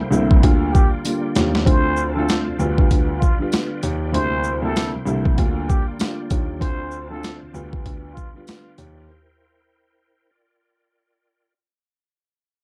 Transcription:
0.00 1.64 A#3 medium
0.00 0.41 E4 medium
0.00 0.41 C5 medium
0.00 1.63 G5 medium
0.11 0.40 C2 medium
0.11 0.42 D2 loud
0.11 0.43 C3 medium
0.11 0.41 G3 medium
0.11 0.42 A#3 medium
0.11 0.44 E4 loud
0.11 shaker medium
0.31 kick loud
0.41 0.72 D2 loud
0.41 1.00 D3 medium
0.41 1.01 G3 medium
0.41 1.01 A#3 medium
0.41 1.64 F4 medium
0.41 1.02 F4 loud
0.41 1.64 D5 medium
0.41 kick medium
0.41 closed hi-hat medium
0.72 0.90 G4 medium
0.72 kick medium
0.72 shaker medium
1.04 1.34 D3 medium
1.04 1.34 G3 medium
1.04 1.35 A#3 medium
1.04 1.35 F4 medium
1.04 closed hi-hat medium
1.04 tambourine medium
1.35 1.64 D#2 medium
1.35 1.63 D3 medium
1.35 1.65 G3 medium
1.35 1.65 A#3 medium
1.35 1.66 F4 medium
1.35 snare loud
1.35 closed hi-hat medium
1.35 shaker medium
1.55 snare medium
1.64 2.24 D2 loud
1.64 2.11 D3 loud
1.64 2.11 A3 medium
1.64 2.11 C4 medium
1.64 4.12 F4 medium
1.64 2.12 F4 loud
1.64 2.13 C5 loud
1.64 2.59 C5 medium
1.64 2.59 D5 medium
1.64 2.59 A5 medium
1.64 kick loud
1.64 closed hi-hat loud
1.97 shaker medium
2.13 2.56 D3 loud
2.13 2.57 A3 medium
2.13 2.43 A4 medium
2.18 2.57 C4 medium
2.18 2.58 F4 loud
2.28 snare loud
2.28 closed hi-hat medium
2.28 tambourine medium
2.47 2.52 D2 soft
2.58 2.88 D2 loud
2.58 2.76 D3 loud
2.58 2.77 G3 medium
2.58 2.78 B3 medium
2.58 2.79 F4 loud
2.58 4.13 B4 medium
2.58 4.13 D5 medium
2.58 5.35 G5 medium
2.58 shaker medium
2.77 3.34 D3 medium
2.77 3.34 G3 medium
2.77 3.35 B3 medium
2.77 3.35 F4 loud
2.77 kick loud
2.91 3.19 D2 loud
2.91 kick medium
2.91 closed hi-hat medium
3.19 3.37 F4 medium
3.19 kick medium
3.19 shaker medium
3.39 3.80 D3 medium
3.39 3.80 G3 medium
3.39 3.81 B3 medium
3.39 3.81 F4 loud
3.52 snare loud
3.52 closed hi-hat medium
3.52 tambourine medium
3.83 4.12 D#2 loud
3.83 closed hi-hat medium
3.83 shaker medium
4.12 4.58 D2 loud
4.12 4.72 D2 loud
4.12 4.59 C3 medium
4.12 4.59 G3 medium
4.12 6.59 A#3 medium
4.12 4.59 A#3 medium
4.12 5.36 E4 medium
4.12 4.60 E4 loud
4.12 5.36 C5 medium
4.12 4.60 C5 loud
4.12 closed hi-hat medium
4.44 shaker medium
4.62 4.91 D2 loud
4.62 4.91 C3 medium
4.62 4.92 G3 medium
4.62 4.92 A#3 loud
4.62 4.92 E4 loud
4.62 4.91 A4 medium
4.76 snare loud
4.76 closed hi-hat medium
4.76 tambourine medium
4.94 4.99 C2 soft
5.06 5.35 C2 medium
5.06 5.37 D2 loud
5.06 5.37 C3 medium
5.06 5.36 G3 medium
5.06 5.37 A#3 medium
5.06 5.39 E4 loud
5.06 shaker medium
5.25 kick loud
5.37 5.66 D2 loud
5.37 5.95 D3 medium
5.37 5.96 G3 medium
5.37 5.96 A#3 medium
5.37 7.52 F4 medium
5.37 5.97 F4 loud
5.37 9.05 D5 medium
5.37 6.60 G5 medium
5.37 kick medium
5.37 closed hi-hat medium
5.68 5.85 G4 medium
5.68 kick medium
5.68 shaker medium
5.99 6.28 D3 medium
5.99 6.29 G3 medium
5.99 6.29 A#3 medium
5.99 6.30 F4 medium
5.99 snare loud
5.99 closed hi-hat medium
5.99 tambourine medium
6.30 6.59 D#2 medium
6.30 6.57 D3 medium
6.30 6.60 G3 medium
6.30 6.60 A#3 medium
6.30 6.60 F4 medium
6.30 kick loud
6.30 closed hi-hat medium
6.30 shaker medium
6.59 7.19 D2 loud
6.59 7.05 D3 loud
6.59 7.06 A3 medium
6.59 7.06 C4 medium
6.59 7.07 F4 loud
6.59 7.08 C5 loud
6.59 7.53 C5 medium
6.59 7.53 A5 medium
6.59 kick loud
6.59 closed hi-hat loud
6.91 shaker medium
7.10 7.51 D3 loud
7.10 7.51 A3 medium
7.10 7.52 C4 medium
7.10 7.52 F4 loud
7.10 7.38 A4 medium
7.23 snare loud
7.23 closed hi-hat medium
7.23 tambourine medium
7.42 7.47 D2 soft
7.53 7.83 D2 loud
7.53 7.71 D3 loud
7.53 7.72 G3 medium
7.53 7.72 B3 medium
7.53 9.07 F4 medium
7.53 7.73 F4 loud
7.53 9.07 B4 medium
7.53 11.52 G5 medium
7.53 shaker medium
7.72 8.28 D3 medium
7.72 8.29 G3 medium
7.72 8.29 B3 medium
7.72 8.30 F4 loud
7.72 kick loud
7.86 8.14 D2 loud
7.86 kick medium
7.86 closed hi-hat medium
8.14 8.32 F4 medium
8.14 kick medium
8.14 shaker medium
8.34 8.75 D3 medium
8.34 8.75 G3 medium
8.34 8.76 B3 medium
8.34 8.76 F4 loud
8.47 snare loud
8.47 closed hi-hat medium
8.47 tambourine medium
8.78 9.06 D#2 loud
8.78 closed hi-hat medium
8.78 shaker medium
9.07 10.31 E4 medium
9.07 11.53 A#4 medium
9.07 10.31 C5 medium
10.31 11.54 F4 medium
10.31 11.54 D5 medium

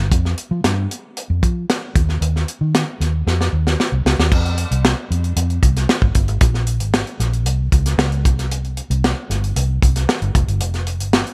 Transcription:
0.12 0.33 F2 medium
0.12 kick medium
0.12 closed hi-hat medium
0.25 snare soft
0.37 closed hi-hat medium
0.51 0.62 F3 medium
0.64 0.86 G2 medium
0.64 snare loud
0.64 closed hi-hat medium
0.91 closed hi-hat medium
1.17 closed hi-hat medium
1.30 1.41 F2 medium
1.43 1.64 F3 medium
1.43 kick medium
1.43 closed hi-hat medium
1.70 snare loud
1.70 closed hi-hat medium
1.95 2.17 D#2 medium
1.95 kick loud
1.95 closed hi-hat medium
2.09 snare soft
2.21 2.43 D#2 loud
2.21 closed hi-hat medium
2.36 snare soft
2.48 closed hi-hat medium
2.61 2.83 D#3 medium
2.75 snare loud
2.75 closed hi-hat medium
3.00 3.22 D#2 medium
3.00 snare soft
3.00 closed hi-hat medium
3.27 3.48 F2 medium
3.27 snare medium
3.41 snare soft
3.53 3.74 D#2 medium
3.67 snare medium
3.80 snare medium
3.92 4.03 C2 medium
4.05 4.16 C#2 medium
4.05 snare medium
4.18 4.29 D#2 medium
4.18 snare medium
4.32 4.64 F2 loud
4.32 kick medium
4.32 crash medium
4.45 closed hi-hat soft
4.58 closed hi-hat medium
4.71 4.93 C2 medium
4.71 closed hi-hat medium
4.85 snare loud
5.11 5.32 F2 medium
5.11 closed hi-hat medium
5.24 closed hi-hat soft
5.36 5.58 F2 medium
5.36 closed hi-hat medium
5.50 closed hi-hat soft
5.63 5.85 C2 medium
5.63 kick medium
5.63 closed hi-hat medium
5.76 snare soft
5.76 closed hi-hat soft
5.89 snare loud
6.02 6.13 G#1 medium
6.02 kick medium
6.14 6.28 G1 medium
6.14 kick medium
6.14 closed hi-hat medium
6.28 6.39 G#1 medium
6.28 closed hi-hat soft
6.41 6.80 A#1 loud
6.41 kick loud
6.41 closed hi-hat medium
6.54 snare soft
6.67 closed hi-hat medium
6.80 7.02 G#1 medium
6.80 closed hi-hat medium
6.94 snare loud
7.07 closed hi-hat soft
7.20 7.46 A#1 medium
7.20 snare soft
7.20 closed hi-hat medium
7.33 closed hi-hat soft
7.46 7.68 C2 medium
7.46 closed hi-hat medium
7.72 7.94 C#2 medium
7.72 kick medium
7.72 closed hi-hat medium
7.86 snare soft
7.86 closed hi-hat medium
7.98 8.25 C#2 loud
7.98 snare loud
8.12 closed hi-hat soft
8.25 8.79 C2 loud
8.25 kick loud
8.25 closed hi-hat medium
8.39 snare soft
8.39 closed hi-hat soft
8.51 closed hi-hat medium
8.64 closed hi-hat soft
8.77 closed hi-hat medium
8.90 9.12 C2 loud
8.90 closed hi-hat medium
9.04 snare loud
9.30 9.51 G1 loud
9.30 snare soft
9.30 closed hi-hat medium
9.44 closed hi-hat soft
9.56 9.78 C2 medium
9.56 closed hi-hat medium
9.82 10.04 C2 medium
9.82 kick medium
9.82 closed hi-hat medium
9.96 snare soft
9.96 closed hi-hat soft
10.09 snare loud
10.22 10.33 G1 medium
10.22 closed hi-hat soft
10.35 10.46 F1 loud
10.35 kick loud
10.35 closed hi-hat medium
10.48 10.61 G1 medium
10.48 closed hi-hat soft
10.60 11.00 F1 loud
10.60 closed hi-hat medium
10.74 snare soft
10.74 closed hi-hat soft
10.87 closed hi-hat medium
11.00 11.22 G1 medium
11.00 closed hi-hat medium
11.13 snare loud
11.26 closed hi-hat soft

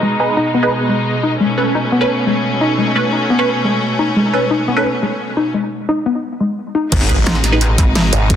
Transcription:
0.00 1.36 B2 medium
0.00 1.36 G#3 medium
0.00 0.17 G#3 medium
0.00 1.36 D#4 medium
0.20 0.36 D#4 medium
0.20 0.36 G#4 medium
0.20 0.36 B4 medium
0.37 0.52 D#4 loud
0.54 0.64 B3 loud
0.63 0.73 D#4 medium
0.63 0.73 G#4 medium
0.63 0.73 B4 loud
0.89 0.99 G#3 medium
1.23 1.38 D#4 loud
1.40 5.50 B2 medium
1.40 1.55 G#3 medium
1.40 5.50 A3 medium
1.40 5.50 C#4 medium
1.58 1.74 C#4 medium
1.58 1.74 A4 medium
1.58 1.74 B4 medium
1.75 1.90 D#4 loud
1.92 2.02 B3 loud
2.01 2.11 C#4 medium
2.01 2.11 A4 medium
2.01 2.11 B4 loud
2.27 2.36 G#3 medium
2.61 2.76 D#4 loud
2.78 2.93 G#3 medium
2.96 3.12 C#4 medium
2.96 3.12 A4 medium
2.96 3.12 B4 medium
3.13 3.28 D#4 loud
3.30 3.40 B3 loud
3.39 3.49 C#4 medium
3.39 3.49 A4 medium
3.39 3.49 B4 loud
3.65 3.74 G#3 medium
3.99 4.14 D#4 loud
4.16 4.31 G#3 medium
4.33 4.49 C#4 medium
4.33 4.49 A4 medium
4.33 4.49 B4 medium
4.51 4.66 D#4 loud
4.68 4.78 B3 loud
4.76 4.87 C#4 medium
4.76 4.87 A4 medium
4.76 4.87 B4 loud
5.03 5.12 G#3 medium
5.37 5.52 D#4 loud
5.54 5.69 G#3 medium
5.89 6.03 D#4 loud
6.06 6.16 B3 loud
6.40 6.50 G#3 medium
6.75 6.90 D#4 loud
6.92 7.25 G#1 loud
6.92 8.36 B2 medium
6.92 8.36 G#3 medium
6.92 8.36 D#4 medium
6.92 kick loud
6.92 closed hi-hat medium
6.92 crash loud
6.92 impact medium
7.01 snare soft
7.09 7.25 D#4 medium
7.09 7.25 G#4 medium
7.09 7.25 B4 medium
7.09 kick medium
7.09 closed hi-hat loud
7.27 7.77 A1 loud
7.27 snare loud
7.27 closed hi-hat medium
7.35 snare soft
7.44 snare soft
7.44 closed hi-hat medium
7.52 7.62 D#4 loud
7.52 7.62 G#4 medium
7.52 7.62 B4 loud
7.61 closed hi-hat medium
7.78 8.11 G#1 loud
7.78 kick loud
7.78 closed hi-hat medium
7.95 snare loud
7.95 closed hi-hat medium
8.13 8.36 G#1 medium
8.13 closed hi-hat loud
8.30 kick loud
8.30 closed hi-hat medium

